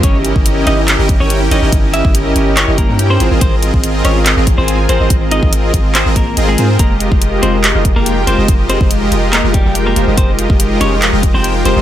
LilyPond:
<<
  \new Staff \with { instrumentName = "Supersaw synth" } { \time 4/4 \key f \minor \tempo 4 = 142 <des' fes' g' bes' ees''>8. <des' fes' g' bes'>8. <des' fes' g' bes' ees''>8. <des' fes' g' bes' ees''>8 <des' fes' g' bes' g''>8. <des' fes' g' bes' des''>16 <des' fes' g' bes' ees''>16 | <des' fes' g' bes' ees''>8. <des' fes' g' bes' ees''>8. <des' fes' g' bes' ees''>8. <des' fes' g' bes' ees''>8 <des' fes' g' bes' g''>8. <c' f' aes' bes' c''>16 <c' f' aes' bes' ees''>16 | <f' aes' bes' ees''>8. <c' aes' ees''>8. <c' f' aes' bes' ees''>8. <c' f' aes' bes' ees''>8 <c' f' aes' bes' aes''>8. <c' f' aes' bes' c''>16 <c' f' aes' bes' ees''>16 | r8. <c' f' aes' bes' ees''>8. c'8. <c' f' aes' bes' ees''>8 r16 <c' f' aes' bes' ees''>16 r16 <c' f' aes' bes' c''>8 |
<aes f' g' bes' ees''>8. <aes f' g' bes' ees''>8. <aes f' g' bes' ees''>8. <aes f' g' bes' ees''>8 <aes f' g' bes' g''>8. <aes f' g' bes' c''>16 <aes f' g' bes' ees''>16 | <aes f' g'>8. <aes f' g' ees''>8. <aes f' g' bes' ees''>8. <aes f' g' bes' ees''>8 <aes f' g' bes' g''>8. <aes f' g' bes' c''>16 <aes f' g' bes' ees''>16 | <aes f' g' bes'>8. <aes f' g' bes' ees''>8. <aes f' g' bes' ees''>8. <aes f' g' bes' ees''>8 <aes f' g' bes' g''>8. <aes f' g' bes' c''>16 <aes f' g' bes' ees''>16 | }
  \new Staff \with { instrumentName = "Clean electric guitar" } { \time 4/4 \key f \minor <des' des''>16 r4 r16 <ees' ees''>16 r4 <des' des''>8 r16 <ees' ees''>8 | r8 <fes' fes''>8 r4 <des' des''>16 r16 <bes bes'>8 r16 <c' c''>8 r16 | <c' c''>16 r4 r16 <des' des''>16 r4 <c' c''>8 r16 <c' c''>8 | r8 <ees' ees''>8 r4 <c' c''>16 r16 <bes bes'>8 r16 <aes aes'>8 r16 |
<bes bes'>16 r4 r16 <c' c''>16 r4 <bes bes'>8 r16 <c' c''>8 | r8 <c' c''>8 r4 <bes bes'>16 r16 <g g'>8 r16 <bes bes'>8 r16 | <c' c''>16 r4 r16 <des' des''>16 r4 <c' c''>8 r16 <c' c''>8 | }
  \new Staff \with { instrumentName = "Ambient pad" } { \time 4/4 \key f \minor << { bes'1~ | bes'2.~ bes'8 f'8~ | f'1~ | f'1 |
bes'1~ | bes'1 | c''1 | } \\ { <g des' fes'>1~ | <g des' fes'>2.~ <g des' fes'>8 <aes c'>8~ | <aes c'>1~ | <aes c'>1 |
<f ees' g' aes'>1~ | <f ees' g' aes'>1~ | <f ees' g' aes'>1 | } >> }
  \new Staff \with { instrumentName = "808-style bass" } { \clef bass \time 4/4 \key f \minor g,,8. g,,8. g,,8. g,,8 g,,8. g,,16 g,,16 | g,,8. g,,8. g,,8. g,,8 g,8. aes,,16 aes,,16 | aes,,8. aes,,8. aes,,8. aes,,8 aes,,8. aes,,16 aes,,16 | aes,,8. aes,,8. aes,,8. aes,,8. aes,,8 aes,8 |
f,,8. f,,8. f,,8. f,,8 f,,8. f,,16 f,,16 | f,,8. f,,8. f,,8. f,,8 f,,8. f,,16 f,,16 | f,,8. f,,8. f,,8. f,,8 f,,8. f,,16 f,,16 | }
  \new DrumStaff \with { instrumentName = "Drums" } \drummode { \time 4/4 <hh bd>8 hh16 bd16 hh8 hh8 <hc hh>8 <hh bd>8 hh8 hh8 | <hh bd>8 hh16 bd16 hh8 hh8 <hc hh>8 <hh bd>8 hh8 hh8 | <hh bd>8 hh16 bd16 hh8 hh8 <hc hh>8 <hh bd>8 hh8 hh8 | <hh bd>8 hh16 bd16 hh8 <hh bd>8 <hc hh>8 <hh bd>8 hh8 hh8 |
<hh bd>8 hh16 bd16 hh8 hh8 <hc hh>8 <hh bd>8 hh8 hh8 | <hh bd>8 hh16 bd16 hh8 hh8 <hc hh>8 <hh bd>8 hh8 hh8 | <hh bd>8 hh16 bd16 hh8 hh8 <hc hh>8 <hh bd>8 hh8 hh8 | }
>>